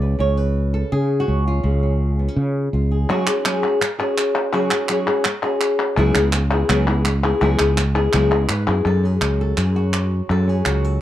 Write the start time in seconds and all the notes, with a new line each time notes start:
Already playing: C#2 C#3 F#3 B3 D5
0.02 B4
0.19 C#2 C#3 C#5
0.37 B4
0.74 A4
0.92 C#3 G#4
1.20 F#4
1.28 C#2 C#4
1.48 F4
1.63 C#2 C#3
1.83 C#4
2.19 B3
2.28 C#4
2.36 C#3
2.73 C#2 F4
2.91 G#4
3.09 C#3 F#3 C#4 F#4 G#4
3.27 C#4 F#4 G#4, clap
3.45 F#3 C#4 F#4 G#4, clap
3.62 C#4 F#4 G#4
3.81 muted nylon-string guitar stroke, clap
3.99 C#4 F#4 G#4
4.18 clap
4.35 clap
4.53 C#3 F#3 C#4 F#4 G#4
4.71 C#4 F#4 G#4, clap
4.89 F#3 C#4 F#4 G#4, clap
5.07 C#4 F#4 G#4
5.24 muted nylon-string guitar stroke, clap
5.43 C#4 F#4 G#4
5.61 clap
5.97 C#2 C#3 F#3 B3 E4 G#4
6.15 C#2 B3 E4 G#4, clap
6.33 muted nylon-string guitar stroke, clap
6.52 B3 E4 G#4
6.69 C#2 C#3 F#3 B3 E4 G#4, clap
6.87 B3 E4 G#4
7.05 muted nylon-string guitar stroke, clap
7.24 B3 E4 G#4
7.41 C#2 C#3 F#3 B3 E4 G#4
7.59 C#2 B3 E4 G#4, clap
7.77 muted nylon-string guitar stroke, clap
7.95 B3 E4 G#4
8.13 C#2 C#3 F#3 B3 E4 G#4, clap
8.31 B3 E4 G#4
8.49 G#2 B4, muted nylon-string guitar stroke, clap
8.67 F#2 B3 E4 G#4
8.85 F#2 F#3 A4
9.03 C#4 G#4
9.21 C#2 F#4, clap
9.41 A4
9.57 F#2 G#4, clap
9.76 F#4
9.93 clap
10.30 F#2 F#3 A4
10.48 C#4 G#4
10.65 C#2 F#4, clap
10.84 A4